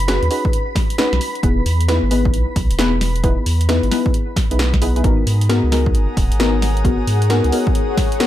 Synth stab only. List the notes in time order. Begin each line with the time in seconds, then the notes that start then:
0.08 C#4 D#4 F#4 G#4 B4
0.30 C#4 D#4 F#4 G#4 B4
0.98 C#4 D#4 F#4 G#4 B4
1.43 B3 D#4 E4 G#4 B4
1.88 B3 D#4 E4 G#4 B4
2.11 B3 D#4 E4 G#4 B4
2.79 B3 D#4 E4 G#4 B4
3.24 B3 D#4 E4 G#4 B4
3.69 B3 D#4 E4 G#4 B4
3.91 B3 D#4 E4 G#4 B4
4.51 B3 D#4 E4 G#4 B4
4.82 B3 D#4 E4 G#4 B4
4.96 B3 D#4 E4 G#4 B4
5.04 B3 D#4 F#4 G#4 A#4
5.49 B3 D#4 F#4 G#4 A#4
5.72 B3 D#4 F#4 G#4 A#4
6.40 B3 D#4 F#4 G#4 A#4
6.85 B3 D#4 F#4 G#4 A#4
7.30 B3 D#4 F#4 G#4 A#4
7.52 B3 D#4 F#4 G#4 A#4
8.20 B3 D#4 F#4 G#4 A#4